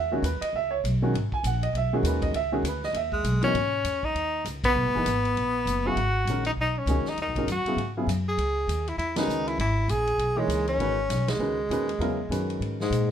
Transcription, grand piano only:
0.00 0.12 E5 medium
0.12 0.22 D#3 medium
0.12 0.22 G#3 medium
0.12 0.23 C#4 medium
0.12 0.22 F#4 medium
0.12 0.23 G#4 medium
0.25 0.42 B4 medium
0.41 0.53 D#5 medium
0.56 0.72 E5 loud
0.71 0.78 C#5 medium
1.02 1.13 D#3 medium
1.02 1.13 G#3 medium
1.02 1.13 C#4 medium
1.02 1.13 F#4 medium
1.34 1.44 G#5 medium
1.47 1.63 F#5 medium
1.63 1.74 D#5 medium
1.77 1.93 E5 medium
1.93 2.32 D#3 medium
1.93 2.32 G#3 medium
1.93 2.33 C#4 medium
1.93 2.33 F#4 medium
1.93 2.04 G#4 medium
2.06 2.23 B4 medium
2.22 2.34 D#5 medium
2.36 2.52 E5 medium
2.52 2.63 D#3 medium
2.52 2.63 G#3 medium
2.52 2.63 C#4 medium
2.52 2.63 F#4 medium
2.52 2.65 G#4 medium
2.68 2.84 B4 medium
2.84 2.95 D#5 loud
2.96 3.23 E5 medium
3.42 3.53 B2 medium
3.42 3.53 E3 medium
3.42 3.53 A#3 medium
3.42 3.53 D#4 medium
3.42 3.54 F#4 medium
4.95 5.05 E3 medium
4.95 5.05 A#3 medium
4.95 5.06 D#4 medium
4.95 5.06 G#4 medium
4.95 5.06 B4 medium
5.85 5.96 C#3 medium
5.85 5.96 F#3 medium
5.85 5.96 B3 medium
5.85 5.96 E4 medium
5.85 5.96 G#4 medium
6.28 6.44 D#3 medium
6.28 6.44 G#3 soft
6.28 6.44 C#4 soft
6.28 6.44 F#4 soft
6.28 6.45 A#4 medium
6.88 7.04 D#3 medium
6.88 7.04 G#3 medium
6.88 7.04 C#4 medium
6.88 7.04 F#4 medium
6.88 7.05 G#4 medium
7.37 7.47 D#3 medium
7.37 7.47 G#3 medium
7.37 7.47 C#4 medium
7.37 7.47 F#4 medium
7.37 7.47 A#4 medium
7.67 7.77 C#3 medium
7.67 7.77 F#3 medium
7.67 7.77 B3 medium
7.67 7.77 E4 medium
7.67 7.78 G#4 medium
7.97 8.07 C#3 medium
7.97 8.07 F#3 medium
7.97 8.07 B3 medium
7.97 8.07 E4 medium
7.97 8.07 G#4 medium
9.16 9.56 D#3 medium
9.16 9.56 G#3 medium
9.16 9.56 C#4 medium
9.16 9.56 F#4 medium
9.16 9.57 B4 medium
10.37 10.77 E3 medium
10.37 10.77 A#3 medium
10.37 10.77 D#4 medium
10.37 10.77 G#4 medium
10.37 10.77 C#5 medium
10.80 10.96 D#3 medium
10.80 10.96 G#3 medium
10.80 10.96 C#4 medium
10.80 10.96 F#4 medium
10.80 10.97 B4 medium
11.39 11.56 D#3 medium
11.39 11.56 G#3 soft
11.39 11.56 C#4 medium
11.39 11.57 F#4 soft
11.39 11.56 B4 medium
11.71 11.87 D#3 medium
11.71 11.87 G#3 medium
11.71 11.87 C#4 medium
11.71 11.87 F#4 medium
11.71 11.87 B4 medium
12.00 12.17 C#3 medium
12.00 12.17 F#3 medium
12.00 12.17 B3 medium
12.00 12.17 E4 medium
12.00 12.17 A#4 medium
12.30 12.75 D#3 medium
12.30 12.76 G#3 medium
12.30 12.76 C#4 medium
12.30 12.76 F#4 medium
12.30 12.76 B4 medium

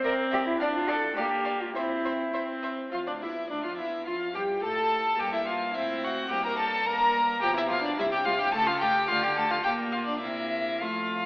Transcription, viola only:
0.05 0.54 C4 medium
0.60 1.11 D4 medium
1.17 1.69 A#3 medium
1.76 2.29 C4 medium
2.34 2.87 C4 medium
2.92 3.07 F4 medium
3.07 3.13 D4 soft
3.23 3.31 E4 soft
3.51 3.65 D4 medium
3.64 3.81 F4 soft
3.79 4.09 E4 medium
4.07 4.34 F4 medium
4.35 4.63 G4 medium
4.64 5.19 A4 medium
5.19 5.77 A#3 medium
5.76 6.33 C4 medium
6.31 6.87 A#3 medium
6.88 7.42 A#3 medium
7.42 7.50 F3 medium
7.71 7.79 F3 medium
7.99 8.07 G3 medium
8.26 8.34 G3 medium
8.54 8.62 A3 medium
8.82 8.90 A3 medium
9.11 9.19 A3 medium
9.38 9.46 A3 medium
9.66 10.18 A#3 medium
10.22 10.83 A#3 medium
10.81 11.26 A3 medium

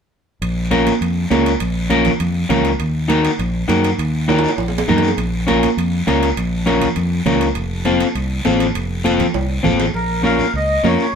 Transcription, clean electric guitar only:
0.71 0.92 C#4 medium
0.71 0.92 F4 medium
0.71 0.92 A#4 medium
1.30 1.52 C#4 medium
1.30 1.52 F4 medium
1.30 1.52 A#4 medium
1.90 2.11 C#4 medium
1.90 2.11 F4 medium
1.90 2.11 A#4 medium
2.49 2.70 C#4 medium
2.49 2.71 F4 medium
2.49 2.71 A#4 medium
3.08 3.30 D#4 medium
3.08 3.30 F#4 medium
3.08 3.30 A#4 medium
3.68 3.89 D#4 medium
3.68 3.89 F#4 medium
3.68 3.90 A#4 medium
4.28 4.49 D#4 medium
4.28 4.49 F#4 medium
4.28 4.49 A#4 medium
4.88 5.09 D#4 medium
4.88 5.09 F#4 medium
4.88 5.09 A#4 medium
5.47 5.68 C#4 medium
5.47 5.68 F4 medium
5.47 5.68 A#4 loud
6.07 6.28 C#4 medium
6.07 6.28 F4 medium
6.07 6.28 A#4 medium
6.66 6.87 C#4 medium
6.66 6.87 F4 medium
6.66 6.88 A#4 medium
7.26 7.47 C#4 medium
7.26 7.47 F4 medium
7.26 7.47 A#4 medium
7.85 8.06 C4 medium
7.85 8.07 F4 medium
7.85 8.07 A4 medium
8.45 8.66 C4 medium
8.45 8.66 F4 medium
8.45 8.66 A4 medium
9.04 9.25 C4 medium
9.04 9.26 F4 medium
9.04 9.26 A4 medium
9.63 9.85 C4 medium
9.63 9.85 F4 medium
9.63 9.85 A4 medium
10.23 10.44 C#4 medium
10.23 10.45 F4 medium
10.23 10.45 A#4 medium
10.83 11.04 C#4 medium
10.83 11.05 F4 medium
10.83 11.05 A#4 medium

